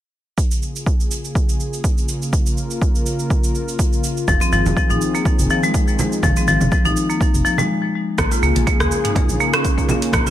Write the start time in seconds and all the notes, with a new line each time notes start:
0.38 C#3 A#3 F4 G#4, kick, cabasa
0.51 cabasa
0.62 cabasa
0.76 cabasa
0.86 kick, cabasa
1.00 cabasa
1.11 cabasa
1.25 cabasa
1.35 kick, cabasa
1.49 cabasa
1.60 cabasa
1.73 cabasa
1.84 kick, cabasa
1.98 cabasa
2.09 cabasa
2.22 cabasa
2.33 A#4, kick, cabasa
2.46 cabasa
2.57 cabasa
2.71 cabasa
2.82 kick, cabasa
2.95 cabasa
3.06 cabasa
3.19 cabasa
3.30 kick, cabasa
3.44 cabasa
3.55 cabasa
3.68 cabasa
3.79 kick, cabasa
3.93 cabasa
4.04 cabasa
4.17 cabasa
4.28 F1 D#3 F3 C4 G#4, kick, high conga, low conga, cabasa
4.40 C4, muted conga, cabasa
4.52 G#1 F3, cabasa
4.66 F1, high conga, low conga, cabasa
4.77 F3, kick, muted conga, cabasa
4.90 A#1 D#4, cabasa
5.01 cabasa
5.15 A#3, cabasa
5.25 kick, muted conga, cabasa
5.39 F1, cabasa
5.50 F3, cabasa
5.63 G#3, muted conga, cabasa
5.74 kick, cabasa
5.88 cabasa
5.99 muted conga, high conga, low conga, cabasa
6.12 cabasa
6.23 F1 F3, kick, high conga, low conga, cabasa
6.36 C4, muted conga, cabasa
6.48 G#1 F3, cabasa
6.61 F1, high conga, low conga, cabasa
6.72 F3, kick, muted conga, cabasa
6.85 A#1 D#4, cabasa
6.97 cabasa
7.10 A#3, cabasa
7.21 kick, muted conga, cabasa
7.34 F1, cabasa
7.45 F3, cabasa
7.58 G#3, muted conga, high conga, low conga, cabasa
8.18 A#1 C#3 A#3 F4 G#4, kick, cross-stick, closed hi-hat, high conga, cabasa
8.31 F4, muted conga, cabasa
8.43 C#2 A#3, cabasa
8.55 A#1, closed hi-hat, high conga, cabasa
8.67 A#3, kick, closed hi-hat, muted conga, cabasa
8.80 D#2 G#4, cross-stick, cabasa
8.92 cabasa
9.05 D#4, closed hi-hat, mid tom, cabasa
9.15 kick, closed hi-hat, muted conga, low conga, cabasa
9.29 A#1, cabasa
9.40 A#3, cabasa
9.53 C#4, cross-stick, closed hi-hat, muted conga, cabasa
9.65 kick, closed hi-hat, cabasa
9.78 kick, cabasa
9.89 muted conga, high conga, low conga, cabasa
10.02 closed hi-hat, cabasa
10.13 A#1 A#3 A#4, kick, cross-stick, closed hi-hat, high conga, cabasa
10.27 F4, muted conga, cabasa